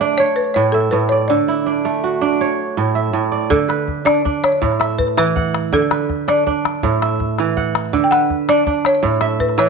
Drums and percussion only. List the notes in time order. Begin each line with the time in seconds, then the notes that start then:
3.51 calabash thump
3.70 calabash click
3.88 calabash thump
4.07 calabash click
4.26 calabash thump
4.44 calabash click
4.62 calabash thump
4.72 calabash click
4.81 calabash click
4.99 calabash thump
5.08 calabash click
5.18 calabash click
5.37 calabash thump
5.55 calabash click
5.73 calabash thump
5.91 calabash click
6.10 calabash thump
6.28 calabash click
6.47 calabash thump
6.65 calabash click
6.83 calabash thump
6.92 calabash click
7.02 calabash click
7.20 calabash thump
7.39 calabash click
7.57 calabash thump
7.75 calabash click
7.94 calabash thump
8.12 calabash click
8.30 calabash thump
8.49 calabash click
8.67 calabash thump
8.85 calabash click
9.04 calabash thump
9.12 calabash click
9.21 calabash click
9.40 calabash thump
9.49 calabash click
9.59 calabash click